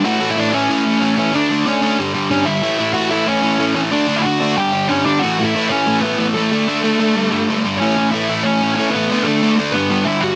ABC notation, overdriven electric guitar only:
X:1
M:4/4
L:1/8
Q:1/4=186
K:Amix
V:1 name="Overdriven electric guitar" clef=bass
[A,,E,A,] [A,,E,A,] [A,,E,A,] [A,,E,A,] [A,,E,A,] [A,,E,A,] [A,,E,A,] [A,,E,A,] | [D,A,D] [D,A,D] [D,A,D] [D,A,D] [G,,D,G,] [G,,D,G,] [G,,D,G,] [G,,D,G,] | [A,,E,A,] [A,,E,A,] [A,,E,A,] [A,,E,A,] [A,,E,A,] [A,,E,A,] [A,,E,A,] [A,,E,A,] | [D,A,D] [D,A,D] [D,A,D] [D,A,D] [G,,D,G,] [G,,D,G,] [G,,D,G,] [G,,D,G,] |
[A,,E,A,] [A,,E,A,] [A,,E,A,] [A,,E,A,] [A,,E,A,] [A,,E,A,] [A,,E,A,] [A,,E,A,] | [D,A,D] [D,A,D] [D,A,D] [D,A,D] [G,,D,G,] [G,,D,G,] [G,,D,G,] [G,,D,G,] | [A,,E,A,] [A,,E,A,] [A,,E,A,] [A,,E,A,] [A,,E,A,] [A,,E,A,] [A,,E,A,] [A,,E,A,] | [D,A,D] [D,A,D] [D,A,D] [D,A,D] [G,,D,G,] [G,,D,G,] [G,,D,G,] [G,,D,G,] |]